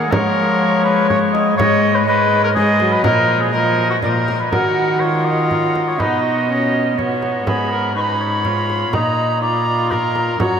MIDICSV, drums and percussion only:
0, 0, Header, 1, 2, 480
1, 0, Start_track
1, 0, Key_signature, -6, "minor"
1, 0, Tempo, 490196
1, 107, Time_signature, 3, 2, 24, 8
1, 10379, End_track
2, 0, Start_track
2, 0, Title_t, "Frame drum"
2, 122, Note_on_c, 9, 64, 79
2, 220, Note_off_c, 9, 64, 0
2, 1079, Note_on_c, 9, 64, 51
2, 1177, Note_off_c, 9, 64, 0
2, 1320, Note_on_c, 9, 64, 45
2, 1418, Note_off_c, 9, 64, 0
2, 1562, Note_on_c, 9, 64, 82
2, 1660, Note_off_c, 9, 64, 0
2, 2512, Note_on_c, 9, 64, 51
2, 2610, Note_off_c, 9, 64, 0
2, 2742, Note_on_c, 9, 64, 44
2, 2840, Note_off_c, 9, 64, 0
2, 2978, Note_on_c, 9, 64, 81
2, 3076, Note_off_c, 9, 64, 0
2, 3940, Note_on_c, 9, 64, 50
2, 4038, Note_off_c, 9, 64, 0
2, 4195, Note_on_c, 9, 64, 44
2, 4293, Note_off_c, 9, 64, 0
2, 4431, Note_on_c, 9, 64, 71
2, 4529, Note_off_c, 9, 64, 0
2, 5395, Note_on_c, 9, 64, 42
2, 5493, Note_off_c, 9, 64, 0
2, 5636, Note_on_c, 9, 64, 41
2, 5734, Note_off_c, 9, 64, 0
2, 5874, Note_on_c, 9, 64, 67
2, 5972, Note_off_c, 9, 64, 0
2, 6842, Note_on_c, 9, 64, 43
2, 6940, Note_off_c, 9, 64, 0
2, 7075, Note_on_c, 9, 64, 38
2, 7173, Note_off_c, 9, 64, 0
2, 7315, Note_on_c, 9, 64, 70
2, 7413, Note_off_c, 9, 64, 0
2, 8272, Note_on_c, 9, 64, 46
2, 8370, Note_off_c, 9, 64, 0
2, 8517, Note_on_c, 9, 64, 37
2, 8615, Note_off_c, 9, 64, 0
2, 8746, Note_on_c, 9, 64, 69
2, 8844, Note_off_c, 9, 64, 0
2, 9708, Note_on_c, 9, 64, 46
2, 9806, Note_off_c, 9, 64, 0
2, 9944, Note_on_c, 9, 64, 41
2, 10042, Note_off_c, 9, 64, 0
2, 10182, Note_on_c, 9, 64, 70
2, 10280, Note_off_c, 9, 64, 0
2, 10379, End_track
0, 0, End_of_file